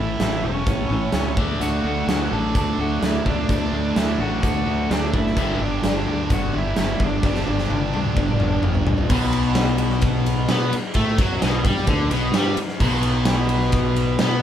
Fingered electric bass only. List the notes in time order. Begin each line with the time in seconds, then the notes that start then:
Already playing: A1
0.20 A1
0.43 E1
0.67 A1
0.89 A1
1.13 C#2
1.37 D2
1.60 D2
1.84 D2
2.07 D2
2.31 A1
2.55 D2
2.77 D2
3.02 D2
3.25 D2
3.48 D2
3.72 D2
3.96 D2
4.19 A1
4.43 D2
4.67 D2
4.90 D2
5.14 F#1
5.37 G1
5.60 G1
5.84 G1
6.07 D2
6.30 G1
6.55 G1
6.78 G1
6.99 G1
7.23 G1
7.48 G1
7.70 G1
7.94 D2
8.17 G1
8.41 G1
8.63 G1
8.86 A#1
9.09 B1
10.48 B2
10.73 muted fingered electric bass stroke
10.95 A2
11.18 F#2
11.42 B1
11.64 G2
11.87 D2
12.10 B1
12.32 G2
12.56 muted fingered electric bass stroke
12.80 B1
14.19 B2